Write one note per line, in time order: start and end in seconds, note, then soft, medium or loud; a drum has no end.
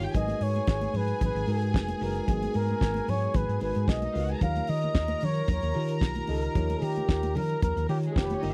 0.00 0.17 D#3 medium
0.00 0.14 D#4 medium
0.00 0.17 F4 medium
0.00 0.16 G4 medium
0.00 0.13 G4 medium
0.00 0.17 C#5 medium
0.00 closed hi-hat soft
0.04 0.14 G5 loud
0.12 0.33 G#1 loud
0.12 0.89 G#3 medium
0.12 0.90 D#4 medium
0.12 0.90 F#4 medium
0.12 3.96 G#4 medium
0.12 0.90 A#4 medium
0.12 0.90 B4 medium
0.12 0.44 D#5 loud
0.12 3.97 G#5 loud
0.12 kick loud
0.12 closed hi-hat medium
0.12 muted conga soft
0.12 low conga medium
0.28 closed hi-hat soft
0.28 high conga medium
0.41 0.59 G#2 loud
0.41 0.98 C#5 loud
0.41 open hi-hat medium
0.41 muted conga soft
0.55 closed hi-hat soft
0.55 high conga medium
0.67 0.86 G#1 loud
0.67 kick loud
0.67 snare loud
0.67 muted conga soft
0.81 closed hi-hat medium
0.81 high conga medium
0.94 1.12 G#2 medium
0.94 1.22 B4 loud
0.94 open hi-hat medium
0.94 low conga medium
1.08 closed hi-hat medium
1.21 1.31 G#1 loud
1.21 1.72 B4 medium
1.21 kick loud
1.21 closed hi-hat medium
1.21 muted conga soft
1.21 low conga medium
1.35 1.44 G#1 loud
1.35 closed hi-hat soft
1.47 1.75 G#2 medium
1.47 1.86 G#3 medium
1.47 1.86 D#4 medium
1.47 1.86 F#4 medium
1.47 1.86 A#4 medium
1.47 1.87 B4 medium
1.47 open hi-hat medium
1.62 closed hi-hat medium
1.74 1.92 F1 medium
1.74 kick loud
1.74 snare loud
1.74 muted conga soft
1.88 closed hi-hat medium
1.88 high conga medium
2.00 2.19 F#1 loud
2.00 2.20 G#3 medium
2.00 2.20 D#4 medium
2.00 2.20 F#4 medium
2.00 2.20 A#4 medium
2.00 2.30 A#4 medium
2.00 2.21 B4 medium
2.00 open hi-hat medium
2.00 muted conga soft
2.15 closed hi-hat soft
2.27 2.46 G#1 loud
2.27 3.03 G#3 medium
2.27 3.04 B3 medium
2.27 3.03 D#4 medium
2.27 3.03 F#4 medium
2.27 2.58 G#4 medium
2.27 3.03 A#4 medium
2.27 kick loud
2.27 closed hi-hat medium
2.27 muted conga soft
2.27 low conga medium
2.42 closed hi-hat medium
2.42 high conga medium
2.54 2.73 G#2 loud
2.54 3.11 A#4 loud
2.54 open hi-hat medium
2.69 closed hi-hat soft
2.69 high conga medium
2.81 2.99 G#1 loud
2.81 kick loud
2.81 snare loud
2.94 closed hi-hat medium
2.94 high conga medium
3.08 3.26 G#2 loud
3.08 3.38 C#5 loud
3.08 open hi-hat medium
3.08 muted conga soft
3.08 low conga medium
3.22 closed hi-hat soft
3.34 3.44 G#1 loud
3.34 3.62 B4 loud
3.34 kick loud
3.34 closed hi-hat medium
3.34 muted conga soft
3.34 low conga medium
3.48 3.57 G#2 medium
3.48 closed hi-hat soft
3.60 3.71 G#1 medium
3.60 3.99 G#3 medium
3.60 4.00 D#4 medium
3.60 4.00 F#4 medium
3.60 4.00 A#4 medium
3.60 4.00 B4 medium
3.60 3.90 B4 medium
3.60 open hi-hat medium
3.60 muted conga soft
3.75 3.84 G#2 medium
3.75 closed hi-hat medium
3.88 4.06 B1 medium
3.88 4.29 D#5 loud
3.88 kick loud
3.88 snare loud
3.88 muted conga soft
4.02 4.14 D#4 medium
4.02 4.14 D#5 medium
4.02 closed hi-hat medium
4.02 high conga medium
4.14 4.33 C#2 medium
4.14 4.34 G#3 medium
4.14 4.34 D#4 medium
4.14 4.23 F4 medium
4.14 4.34 F#4 medium
4.14 4.34 A#4 medium
4.14 4.34 B4 medium
4.14 4.23 F5 medium
4.14 open hi-hat medium
4.23 4.32 F#4 medium
4.23 4.32 F#5 medium
4.29 4.41 G#4 medium
4.29 4.41 G#5 medium
4.29 closed hi-hat soft
4.40 4.59 D#2 loud
4.40 5.17 D#3 medium
4.40 5.17 D#4 medium
4.40 5.17 F4 medium
4.40 5.18 G4 medium
4.40 7.98 A#4 medium
4.40 5.18 C#5 medium
4.40 4.71 F5 loud
4.40 7.98 A#5 medium
4.40 kick loud
4.40 closed hi-hat medium
4.40 muted conga soft
4.40 low conga medium
4.56 closed hi-hat medium
4.56 high conga medium
4.67 4.87 D#3 loud
4.67 5.26 D#5 loud
4.67 open hi-hat medium
4.67 muted conga soft
4.82 closed hi-hat soft
4.82 high conga medium
4.95 5.13 D#2 loud
4.95 kick loud
4.95 snare loud
4.95 muted conga soft
5.08 closed hi-hat soft
5.08 high conga medium
5.21 5.40 D#3 loud
5.21 open hi-hat medium
5.21 muted conga soft
5.21 low conga medium
5.25 5.50 C#5 loud
5.35 closed hi-hat medium
5.48 5.58 D#2 loud
5.48 kick loud
5.48 closed hi-hat medium
5.48 low conga medium
5.52 6.00 C#5 medium
5.63 5.71 D#2 loud
5.63 closed hi-hat soft
5.74 6.13 D#3 medium
5.74 6.03 D#3 loud
5.74 6.13 D#4 medium
5.74 6.13 F4 medium
5.74 6.13 G4 medium
5.74 6.14 A#4 medium
5.74 open hi-hat medium
5.88 closed hi-hat medium
6.01 6.19 B1 medium
6.01 kick loud
6.01 snare loud
6.01 muted conga soft
6.15 closed hi-hat soft
6.15 high conga medium
6.27 6.47 C#2 medium
6.27 6.47 D#3 medium
6.27 6.48 D#4 medium
6.27 6.48 F4 medium
6.27 6.48 G4 medium
6.27 6.85 A#4 medium
6.27 6.48 D#5 medium
6.27 open hi-hat medium
6.27 muted conga soft
6.42 closed hi-hat soft
6.55 6.73 D#2 loud
6.55 7.31 D#3 medium
6.55 7.31 D#4 medium
6.55 7.31 F4 medium
6.55 7.31 G4 medium
6.55 7.32 C#5 medium
6.55 kick loud
6.55 closed hi-hat medium
6.55 muted conga soft
6.55 low conga medium
6.70 closed hi-hat soft
6.70 high conga medium
6.82 7.00 D#3 loud
6.82 7.38 G4 medium
6.82 open hi-hat medium
6.96 closed hi-hat soft
6.96 high conga medium
7.09 7.37 D#2 loud
7.09 kick loud
7.09 snare loud
7.23 closed hi-hat medium
7.23 high conga medium
7.35 7.54 D#3 loud
7.35 7.62 A#4 loud
7.35 open hi-hat medium
7.35 low conga medium
7.49 closed hi-hat medium
7.62 7.72 D#2 loud
7.62 7.88 A#4 medium
7.62 kick loud
7.62 closed hi-hat medium
7.62 muted conga soft
7.62 low conga medium
7.77 7.85 D#2 loud
7.77 closed hi-hat soft
7.89 8.27 D#3 medium
7.89 8.07 D#3 loud
7.89 8.28 D#4 medium
7.89 8.28 F4 medium
7.89 7.98 G4 medium
7.89 8.28 G4 medium
7.89 8.28 C#5 medium
7.89 open hi-hat medium
7.89 muted conga soft
8.03 8.15 G#3 medium
8.03 8.16 G#4 medium
8.03 closed hi-hat medium
8.12 8.34 F1 medium
8.12 8.25 A#3 medium
8.12 8.18 G#4 medium
8.12 8.25 A#4 medium
8.12 kick loud
8.17 8.54 G4 loud
8.17 snare loud
8.24 8.34 B3 medium
8.24 8.34 B4 medium
8.30 8.43 C#4 medium
8.30 8.43 C#5 medium
8.30 closed hi-hat soft
8.30 high conga medium
8.41 8.54 G1 medium
8.41 8.54 D#3 medium
8.41 8.51 D#4 medium
8.41 8.54 D#4 medium
8.41 8.54 F4 medium
8.41 8.54 G4 medium
8.41 8.54 A#4 medium
8.41 8.51 D#5 medium
8.41 open hi-hat medium
8.41 muted conga soft